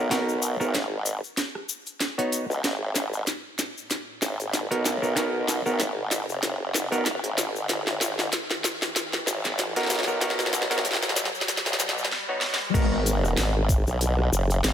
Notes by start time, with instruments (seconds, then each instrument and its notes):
Already playing: wobble bass B1
0.11 clav B3 D#4 F#4 A#4, snare, closed hi-hat, cabasa
0.29 cabasa
0.42 closed hi-hat, cabasa
0.60 wobble bass G#1, clav B3 D#4 F#4 A#4, cross-stick, cabasa
0.74 snare, closed hi-hat, cabasa
1.06 closed hi-hat, cabasa
1.24 cabasa
1.37 snare, closed hi-hat, cabasa
1.55 cross-stick
1.69 cabasa
1.86 closed hi-hat, cabasa
2.00 snare, closed hi-hat, cabasa
2.18 clav B3 D#4 F#4 C#5, closed hi-hat
2.32 closed hi-hat, cabasa
2.50 wobble bass C#2, cabasa
2.63 wobble bass G#1, snare, closed hi-hat, riser, cabasa
2.95 snare, closed hi-hat, cabasa
3.13 cabasa
3.27 snare, closed hi-hat, cabasa
3.59 snare, closed hi-hat, cabasa
3.78 cabasa
3.90 snare, closed hi-hat, cabasa
4.21 wobble bass G#1, snare, cabasa
4.40 closed hi-hat, cabasa
4.53 snare, closed hi-hat, cabasa
4.71 wobble bass B1, clav B3 D#4 F#4 A#4, closed hi-hat
4.85 snare, closed hi-hat, cabasa
5.02 clav B3 D#4 F#4 A#4, cabasa
5.16 clav B3 D#4 F#4 A#4, snare, closed hi-hat, cabasa
5.48 snare, closed hi-hat, cabasa
5.66 wobble bass G#1, clav B3 D#4 F#4 A#4, cabasa
5.80 snare, closed hi-hat, cabasa
6.11 snare, closed hi-hat, cabasa
6.29 wobble bass F#1, cabasa
6.43 snare, closed hi-hat, cabasa
6.74 snare, cabasa
6.92 clav B3 D#4 F#4 A#4, closed hi-hat, cabasa
7.06 snare, closed hi-hat, cabasa
7.23 wobble bass G#1, closed hi-hat
7.38 snare, closed hi-hat, cabasa
7.56 cabasa
7.69 wobble bass G#1, snare, closed hi-hat, cabasa
7.87 snare
8.01 snare, closed hi-hat, cabasa
8.19 snare, cabasa
8.32 snare, closed hi-hat, cabasa
8.51 snare
8.64 snare, cabasa
8.82 snare, cabasa
8.96 snare, closed hi-hat, cabasa
9.13 snare
9.27 wobble bass G#1, snare, cabasa
9.44 snare, closed hi-hat, cabasa
9.58 snare, closed hi-hat, cabasa
9.76 wobble bass B1, clav B3 D#4 F#4 A#4, snare, closed hi-hat
9.80 snare
9.83 snare
9.86 snare, cabasa
9.90 snare, closed hi-hat
9.94 snare
9.99 snare
10.03 snare
10.07 clav B3 D#4 F#4 A#4, cabasa
10.21 clav B3 D#4 F#4 A#4, snare, closed hi-hat, cabasa
10.30 snare
10.39 snare, cabasa
10.46 snare
10.53 snare, closed hi-hat, cabasa
10.62 snare
10.70 wobble bass G#1, clav B3 D#4 F#4 A#4, snare, closed hi-hat, cabasa
10.78 snare
10.85 snare, closed hi-hat, cabasa
10.91 snare
10.93 snare
10.96 snare
11.02 snare, cabasa
11.09 snare
11.16 snare, closed hi-hat, cabasa
11.25 snare
11.35 cabasa
11.41 snare
11.48 snare, closed hi-hat, cabasa
11.57 snare
11.66 wobble bass B1, snare, cabasa
11.73 snare
11.79 snare, cabasa
11.89 snare
11.98 cabasa
12.05 snare
12.11 snare
12.29 clav B3 D#4 F#4 C#5
12.41 snare
12.54 snare
12.74 wobble bass G#1, clav B3 D#4 F#4 A#4, kick, closed hi-hat, crash, cabasa
12.92 cross-stick
13.06 closed hi-hat, cabasa
13.24 cross-stick, cabasa
13.37 wobble bass G#1, snare, closed hi-hat, cabasa
13.69 kick, closed hi-hat, cabasa
13.87 wobble bass B1, cabasa
14.01 closed hi-hat, cabasa
14.19 cross-stick
14.32 wobble bass F#1, cabasa
14.50 closed hi-hat, cabasa
14.64 wobble bass G#1, snare, closed hi-hat, cabasa